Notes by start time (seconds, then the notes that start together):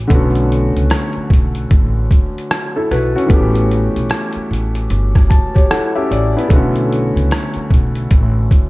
0.07 B1 D3 A3 B3, kick, closed hi-hat
0.13 C#4 F#4
0.35 closed hi-hat
0.52 closed hi-hat
0.76 C#2, closed hi-hat
0.90 cross-stick, closed hi-hat
1.13 muted upright bass stroke, closed hi-hat
1.30 B1, kick, closed hi-hat
1.55 closed hi-hat
1.71 A1, kick, closed hi-hat
2.11 kick, closed hi-hat
2.38 closed hi-hat
2.51 cross-stick, closed hi-hat
2.76 E4 A4
2.91 B1 F#4 B4, cross-stick, closed hi-hat
3.16 C#4 F#4, closed hi-hat
3.26 A1 E3 A3 B3, kick
3.31 C#4 G4, closed hi-hat
3.55 closed hi-hat
3.71 closed hi-hat
3.96 B1, closed hi-hat
4.10 cross-stick, closed hi-hat
4.33 muted upright bass stroke, closed hi-hat
4.51 A1, closed hi-hat
4.75 closed hi-hat
4.90 G1, closed hi-hat
5.15 kick, cross-stick
5.30 A5, kick, closed hi-hat
5.55 G4 C#5, kick, closed hi-hat
5.71 E4 A4 F#5, cross-stick, closed hi-hat
5.95 C#4 G4 E5
6.11 A1 D5, closed hi-hat
6.37 B3 E4, closed hi-hat
6.48 B1 C#3 A3 B3, kick, closed hi-hat
6.53 D3 C#4 F#4
6.76 closed hi-hat
6.92 closed hi-hat
7.16 C#2, closed hi-hat
7.31 cross-stick, closed hi-hat
7.54 muted upright bass stroke, closed hi-hat
7.71 B1, kick, closed hi-hat
7.95 closed hi-hat
8.11 A1, kick, closed hi-hat
8.51 kick, closed hi-hat